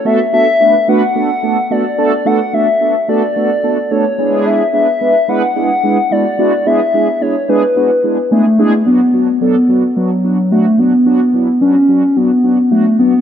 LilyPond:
<<
  \new Staff \with { instrumentName = "Soft synth lead" } { \time 4/4 \key b \dorian \tempo 4 = 109 e''8 e''4 fis''4. d''4 | fis''8 e''4 d''4. cis''4 | e''8 e''4 fis''4. d''4 | e''4 cis''8 b'4. a4 |
b4 b4 fis4 a8 b8~ | b4 cis'4 b4 a8 b8 | }
  \new Staff \with { instrumentName = "Analog polysynth" } { \time 4/4 \key b \dorian <a b d' fis' a'>16 r16 <a b d' fis' a'>16 r16 <a b d' fis' b'>16 r16 <a b d' fis' b'>16 r16 <a b d' fis' a'>16 r16 <a b d' fis' a'>16 r16 <a b d' fis' a'>16 r16 <a b d' fis' a'>16 r16 | <a b d' fis' a'>16 r16 <a b d' fis' a'>16 r16 <a b d' fis' a'>16 r16 <a b d' fis' a'>16 r16 <a b d' fis' a'>16 r16 <a b d' fis' a'>16 r16 <a b d' fis' a'>16 r16 <gis b d' e' gis'>8~ | <gis b d' e' gis'>8 <gis b d' e' b'>16 r16 <gis b d' e' b'>16 r16 <gis b d' e' b'>16 r16 <gis b d' e' gis'>16 r16 <gis b d' e' gis'>16 r16 <gis b d' e' fis'>16 r16 <gis b d' e' fis'>16 r16 | <gis b d' e' gis'>16 r16 <gis b d' e' gis'>16 r16 <gis b d' e' gis'>16 r16 <gis b d' e' gis'>16 r16 <gis b d' e' fis'>16 r16 <gis b d' e' gis'>16 r16 <gis b d' e' gis'>16 r16 <gis b d' e' gis'>16 r16 |
<fis b d' fis'>16 r16 <fis b d' fis'>16 r16 <fis b d' a'>16 r16 <fis b d' fis'>16 r16 <fis b d' fis'>16 r16 <fis b d' fis'>16 r16 <fis b d' fis'>16 r16 <fis b d' fis'>16 r16 | <fis b d' fis'>16 r16 <fis b d' e'>16 r16 <fis b d' fis'>16 r16 <fis b d' fis'>16 r16 <fis b d' fis'>16 r16 <fis b d' fis'>16 r16 <fis b d' fis'>16 r16 <fis b d' fis'>16 r16 | }
>>